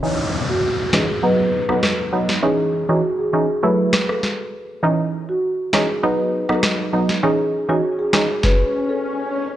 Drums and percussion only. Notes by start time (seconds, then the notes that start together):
0.93 cross-stick, snare
1.69 cross-stick
1.83 cross-stick, snare
2.29 snare
3.93 cross-stick, snare
4.09 cross-stick
4.23 snare
5.73 cross-stick, snare
6.49 cross-stick
6.63 cross-stick, snare
7.09 snare
8.13 cross-stick, snare
8.43 kick, snare